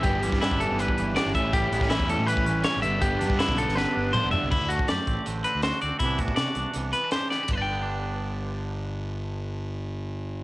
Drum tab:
CC |----------------|----------------|----------------|x---------------|
RD |----------------|----------------|----------------|----------------|
HH |x-x-x-x-x-x-x-x-|x-x-x-x-x-x-x-x-|x-x-x-x---------|--x-x-x-x-x-x-x-|
SD |---oo-------o---|---oo-------o---|----oo-oo-------|----o-------oo--|
T2 |----------------|----------------|------------o---|----------------|
FT |----------------|----------------|--------------o-|----------------|
BD |o--o-o---o----o-|o--o-o---o------|o--o-o----------|o--o--o---------|

CC |----------------|----------------|----------------|
RD |----------------|b---------------|----------------|
HH |x-x-x-x-x-x-x---|----------------|----------------|
SD |----o-------o-o-|----------------|----------------|
T2 |----------------|----------------|----------------|
FT |----------------|----------------|----------------|
BD |o-oo------------|o---------------|----------------|